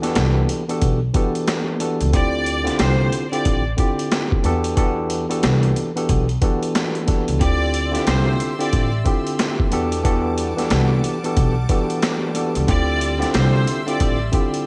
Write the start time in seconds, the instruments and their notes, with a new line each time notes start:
0.01 tine electric piano E3 B3 D4 F#4 G4 A4, snare, closed hi-hat
0.15 upright bass C2, snare, closed hi-hat
0.49 closed hi-hat
0.68 tine electric piano E3 B3 D4 F#4 G4 A4, closed hi-hat
0.82 upright bass B1, kick, closed hi-hat
1.14 tine electric piano E3 B3 D4 F#4 G4 A4, kick, closed hi-hat
1.35 closed hi-hat
1.48 snare, closed hi-hat
1.79 tine electric piano E3 B3 D4 F#4 G4 A4, closed hi-hat
2.01 upright bass C#2, closed hi-hat
2.12 upright bass D2, tine electric piano D3 C4 E4 F4 G4, violin section D5, kick, closed hi-hat
2.46 closed hi-hat
2.64 tine electric piano D3 C4 E4 F4 G4, snare, closed hi-hat
2.79 upright bass C2, violin section C5, snare, closed hi-hat
3.13 closed hi-hat
3.32 tine electric piano D3 C4 E4 F4 G4, violin section D5, closed hi-hat
3.45 upright bass A1, kick, closed hi-hat
3.77 tine electric piano D3 C4 E4 F4 G4, kick, closed hi-hat
3.99 closed hi-hat
4.11 snare, closed hi-hat
4.32 kick
4.43 upright bass E2, tine electric piano E3 B3 D4 F#4 G4 A4, closed hi-hat
4.64 closed hi-hat
4.76 tine electric piano E3 B3 D4 F#4 G4 A4, kick, closed hi-hat
5.10 closed hi-hat
5.29 tine electric piano E3 B3 D4 F#4 G4 A4, closed hi-hat
5.43 upright bass C2, snare, closed hi-hat
5.63 closed hi-hat
5.76 closed hi-hat
5.95 tine electric piano E3 B3 D4 F#4 G4 A4, closed hi-hat
6.09 upright bass B1, kick, closed hi-hat
6.29 closed hi-hat
6.41 tine electric piano E3 B3 D4 F#4 G4 A4, kick, closed hi-hat
6.63 closed hi-hat
6.75 snare, closed hi-hat
6.95 closed hi-hat
7.06 tine electric piano E3 B3 D4 F#4 G4 A4, kick, snare, closed hi-hat
7.28 upright bass C#2, closed hi-hat
7.39 upright bass D2, tine electric piano D3 C4 E4 F4 G4, string section G4 E5 C6 E6, violin section D5, kick, closed hi-hat
7.74 closed hi-hat
7.91 tine electric piano D3 C4 E4 F4 G4, closed hi-hat
7.95 snare
8.07 upright bass C2, violin section C5, snare, closed hi-hat
8.40 closed hi-hat
8.59 tine electric piano D3 C4 E4 F4 G4, violin section D5, closed hi-hat
8.73 upright bass A1, kick, closed hi-hat
9.04 tine electric piano D3 C4 E4 F4 G4, kick, closed hi-hat
9.27 closed hi-hat
9.39 snare, closed hi-hat
9.60 kick
9.70 upright bass E2, tine electric piano E3 B3 D4 F#4 G4 A4, string section G3 F#5 A5 D6, closed hi-hat
9.92 closed hi-hat
10.03 tine electric piano E3 B3 D4 F#4 G4 A4, kick, closed hi-hat
10.38 closed hi-hat
10.57 tine electric piano E3 B3 D4 F#4 G4 A4, snare, closed hi-hat
10.70 upright bass C2, snare, closed hi-hat
11.04 closed hi-hat
11.23 tine electric piano E3 B3 D4 F#4 G4 A4, closed hi-hat
11.37 upright bass B1, kick, closed hi-hat
11.69 tine electric piano E3 B3 D4 F#4 G4 A4, kick, closed hi-hat
11.90 closed hi-hat
12.03 snare, closed hi-hat
12.34 tine electric piano E3 B3 D4 F#4 G4 A4, closed hi-hat
12.55 upright bass C#2, closed hi-hat
12.67 upright bass D2, tine electric piano D3 C4 E4 F4 G4, violin section D5, string section E5 C6 E6, kick, closed hi-hat
13.01 closed hi-hat
13.19 tine electric piano D3 C4 E4 F4 G4, closed hi-hat
13.23 snare
13.34 upright bass C2, violin section C5, snare, closed hi-hat
13.67 closed hi-hat
13.86 tine electric piano D3 C4 E4 F4 G4, violin section D5, closed hi-hat
14.00 upright bass A1, kick, closed hi-hat
14.32 tine electric piano D3 C4 E4 F4 G4, kick, closed hi-hat
14.54 closed hi-hat